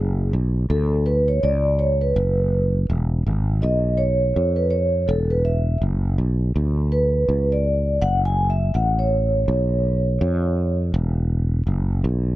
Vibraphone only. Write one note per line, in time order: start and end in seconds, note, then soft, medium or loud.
0.00 0.29 G#4 medium
0.70 1.07 A4 medium
1.06 1.29 B4 loud
1.28 1.43 C#5 medium
1.43 1.81 D5 loud
1.79 2.02 C#5 loud
2.01 2.71 B4 medium
3.62 4.00 D#5 medium
3.97 4.59 C#5 medium
4.56 4.63 B4 medium
4.71 5.05 C#5 medium
5.08 5.31 A4 medium
5.30 5.45 B4 medium
5.45 5.79 E5 medium
6.92 7.54 B4 medium
7.52 8.03 D5 medium
8.02 8.12 F#5 loud
8.25 8.51 G#5 loud
8.50 8.75 E5 loud
8.74 8.99 F#5 loud
8.99 10.78 C#5 medium